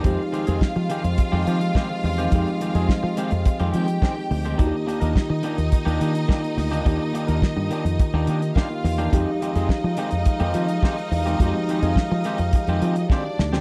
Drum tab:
HH |x-xx-xxxx-xx--ox|xxxx--xxxxxx--ox|x-xx--xxxxxx-xox|x-xx--xxx-xx--ox|
SD |----o-------o---|----o-------o---|----o-------o-o-|----o-------o-o-|
BD |o---o---o---o---|o---o---o---o---|o---o---o---o---|o---o---o---o---|

HH |x-xx--xxxxxx-xox|x-xx--xxxxxx----|
SD |----o-------o---|----o-------o-oo|
BD |o---o---o---o---|o---o---o---o---|